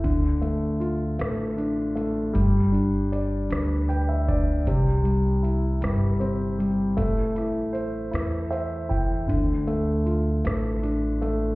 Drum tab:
HH |xxxxxx|xxxxxx|xxxxxx|xxxxxx|
SD |---r--|---r--|---r--|-r-r--|
BD |o-----|o----o|o-----|o----o|

HH |xxxxxx|
SD |---r--|
BD |o-----|